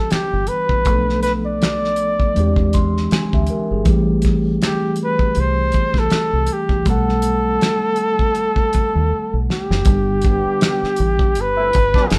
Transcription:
Already playing: E3 G3 B3 D4 G4 A4
0.11 G4, finger snap, muted fingered electric bass stroke, snare, closed hi-hat
0.33 G1
0.47 B4, closed hi-hat
0.69 A1, kick
0.84 B1 F3 A3 B3, kick, closed hi-hat
0.89 C4 A4
0.95 D4
1.09 snare
1.23 B4, snare, closed hi-hat
1.46 D5
1.62 finger snap, snare, closed hi-hat
1.84 snare
1.96 closed hi-hat
2.20 kick
2.34 E2 E3 G#3 C4, closed hi-hat
2.39 D4 G4
2.56 kick
2.73 C6, kick, closed hi-hat
2.97 snare
3.11 G#5, finger snap, muted fingered electric bass stroke, snare, closed hi-hat
3.33 D2 G4 E5, kick
3.47 A#4, closed hi-hat
3.71 G1 G#4
3.84 A1 E3 G3 A3, kick, closed hi-hat
3.89 C4 G4
4.22 kick, snare, closed hi-hat
4.62 G4, finger snap, snare, closed hi-hat
4.96 closed hi-hat
5.03 B4
5.19 kick
5.35 C2, closed hi-hat
5.40 C5
5.72 kick, closed hi-hat
5.94 A1, kick, snare
5.99 A4
6.10 finger snap, snare, closed hi-hat
6.33 C2
6.46 closed hi-hat
6.52 G4
6.69 A1, kick
6.84 B1 D#3 G3 A3, kick, closed hi-hat
6.89 B3 A4 F#5
7.09 snare
7.22 closed hi-hat
7.61 finger snap, snare, closed hi-hat
7.96 closed hi-hat
8.19 kick
8.35 closed hi-hat
8.56 kick
8.73 muted fingered electric bass stroke, kick, closed hi-hat
8.95 D#2
9.12 muted fingered electric bass stroke
9.33 B1
9.50 G4, snare
9.70 F#1, snare
9.83 G1 D3 G3 B3, kick, closed hi-hat
9.88 D4 G4
10.21 B3 D4 G4, kick, closed hi-hat
10.45 muted fingered electric bass stroke
10.61 finger snap, snare, closed hi-hat
10.83 muted fingered electric bass stroke, snare
10.96 A1, closed hi-hat
11.19 kick
11.35 G1, closed hi-hat
11.41 B4
11.57 A3 C4 E4
11.73 G1, kick, closed hi-hat
11.94 G3 B3 D4, kick, snare
12.07 F#1 G#4, closed hi-hat
12.12 A4, finger snap, snare

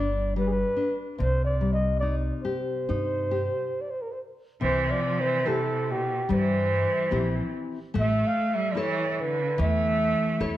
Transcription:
Already playing: G1 G3 D4 D5
0.36 G3 B4
0.46 G#4 B4
0.77 D4
1.18 C2 C3 C5
1.45 D5
1.61 G3
1.73 D#5
2.00 D#4 D5
2.43 G4 C5
2.89 G2 D#4
3.31 G4
3.81 D5
3.90 C5
4.02 A#4
4.12 C5
4.61 C2 C3 E3 C5
4.89 F3 D5
5.18 E3 C5
5.46 C3 E4 G4 A4 C5
5.90 B2 G4
6.29 G2 G3 C5
6.33 E3
7.11 A#1 C4 E4 G4
7.94 A1 A3
8.00 A3 E5
8.27 A3 F5
8.54 G3 E5
8.72 F3 E4 D5
8.77 E3 A4 C#5
9.11 E3 C#5
9.19 D3 B4
9.58 E2 E3 A3 E5
10.40 E2 E4 A4 C#5

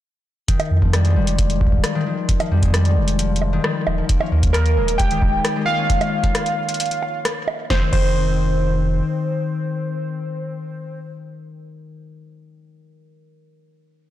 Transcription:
0.48 F1 D#3, kick, closed hi-hat
0.60 closed hi-hat, high bongo
0.71 F2
0.82 F3, kick
0.93 G3, cross-stick, closed hi-hat
1.05 G#3, closed hi-hat
1.16 F1 G3
1.27 closed hi-hat
1.39 kick, closed hi-hat
1.50 closed hi-hat
1.61 F3, kick
1.67 kick
1.72 kick
1.78 kick
1.84 cross-stick, closed hi-hat
1.95 D#3
2.06 D#3
2.29 F1, kick, closed hi-hat
2.40 F3, closed hi-hat, high bongo
2.51 F2 G3
2.63 G#3, kick, closed hi-hat
2.74 G3, cross-stick, closed hi-hat
2.85 closed hi-hat
2.96 F1
3.08 closed hi-hat
3.19 F3, closed hi-hat
3.36 closed hi-hat
3.42 high bongo
3.53 D#3
3.64 D#3, cross-stick
3.87 D#1, high bongo
3.98 F3
4.09 D#1 A#3, kick, closed hi-hat
4.21 C#4, high bongo
4.32 D#2 A#3
4.43 kick, closed hi-hat
4.53 A#4, cross-stick, closed hi-hat
4.66 closed hi-hat
4.77 D#1 G#3
4.88 closed hi-hat
4.98 G5, kick, closed hi-hat
5.11 D#3, closed hi-hat
5.22 D#3, kick
5.45 cross-stick, closed hi-hat
5.56 G#3
5.66 A#3 F5
5.78 C#4
5.90 kick, closed hi-hat
6.01 closed hi-hat, high bongo
6.24 kick, closed hi-hat
6.35 cross-stick, closed hi-hat
6.46 closed hi-hat
6.69 closed hi-hat
6.74 closed hi-hat
6.80 closed hi-hat
6.86 closed hi-hat
6.91 closed hi-hat
7.03 high bongo
7.25 cross-stick, closed hi-hat
7.48 high bongo
7.70 F1 D#3 C5, kick, snare
7.93 F1 D#3 C5, kick, crash

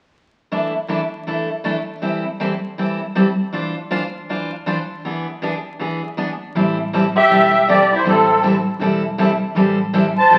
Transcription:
0.52 E3 A3 D4 E4 A4
0.88 E3 A3 D4 E4 A4
1.27 E3 A3 D4 E4 A4
1.64 E3 A3 D4 E4 A4
2.02 E3 G3 C4 E4 A4
2.40 E3 G3 C4 E4 A4
2.78 E3 G3 C4 E4 A4
3.15 E3 G3 C4 E4 A4
3.53 E3 D4 F4 C5
3.91 E3 D4 F4 C5
4.29 E3 D4 F4 C5
4.66 E3 D4 F4 C5
5.05 E3 B3 D4 G#4
5.42 E3 B3 D4 G#4
5.79 E3 B3 D4 G#4
6.17 E3 B3 D4 G#4
6.55 A1 E3 G3 C4 E4 A4
6.93 E3 G3 C4 E4 A4
7.16 G4 E5
7.29 E1 E3 G3 C4 E4 A4
7.68 E3 G3 C4 E4 G4 A4 D5
7.94 E4 C5
8.05 A1 E3 G3 C4 E4 A4
8.43 E3 G3 C4 E4 A4
8.79 E1 E3 G3 C4 E4 A4
9.18 E3 G3 C4 E4 A4
9.55 A1 E3 G3 C4 E4 A4
9.93 E3 G3 C4 E4 A4
10.18 C5 A5
10.31 E1 E3 G3 C4 E4 A4

